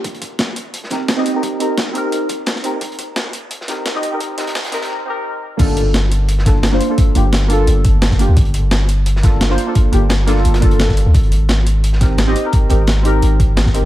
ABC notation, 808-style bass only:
X:1
M:4/4
L:1/16
Q:1/4=173
K:Gm
V:1 name="808-style bass" clef=bass
_A,,,12- A,,,2 z2 | z2 _A,,,6 A,,,6- A,,, E,, | _A,,,12- A,,,2 z2 | z16 |
G,,,12- G,,,2 z2 | z2 G,,,6 G,,,6- G,,, D,, | G,,,12- G,,,2 z2 | z2 G,,,6 G,,,6- G,,, D,, |
_A,,,12- A,,,2 z2 | z2 _A,,,6 A,,,6- A,,, z |]